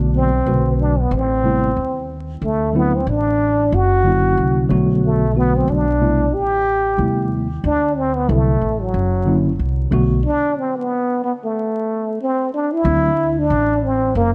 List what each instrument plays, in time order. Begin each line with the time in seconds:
Already playing: upright bass B1, tine electric piano D3 F#3 A3 B3 F#4
0.16 trombone C4
0.45 upright bass B1, tine electric piano C#3 F#3 A3 F#4 B4
0.51 tine electric piano D3
0.81 trombone D4
1.00 trombone B3
1.11 upright bass A1, trombone C4
1.43 tine electric piano C3 G3 A3 B3 E4
1.76 upright bass D#2
2.41 upright bass D2, trombone A3
2.73 tine electric piano D3 F#3 A3 C4 E4
2.77 trombone B3
2.96 trombone C4
3.07 upright bass A1, trombone D4
3.72 upright bass F#1, trombone F#4
4.03 tine electric piano D3 F#3 A#3 C#4 E4
4.37 upright bass C2
4.69 upright bass B1, tine electric piano D3 F#3 A3 B3 F#4
5.05 trombone A3
5.34 tine electric piano D3 F#3 A3 B3 F#4, trombone B3
5.56 trombone C4
5.68 upright bass B1, trombone D4
5.99 tine electric piano C3 G3 A3 B3 E4
6.33 upright bass A1, trombone G4
6.97 upright bass D#2, tine electric piano C3 G3 A3 B3 E4
7.64 upright bass D2, trombone D4
7.97 trombone C4
8.16 trombone B3
8.28 upright bass C2, tine electric piano D3 F#3 A3 C4 E4, trombone A3
8.62 upright bass A1
8.81 trombone F#3
8.94 upright bass F#1
9.25 tine electric piano D3 F#3 A#3 C#4 E4
9.59 upright bass C2
9.91 upright bass B1, tine electric piano D3 F#3 A3 B3 F#4
10.26 trombone D4
10.59 trombone C4
10.78 trombone B3
11.24 trombone B3
11.44 trombone A3
12.22 trombone C4
12.54 trombone D4
12.73 trombone E4
12.84 upright bass D2, tine electric piano D3 F#3 A3 C4 E4
13.39 trombone D4
13.50 upright bass A1
13.84 trombone C4
14.15 upright bass F#1, trombone A#3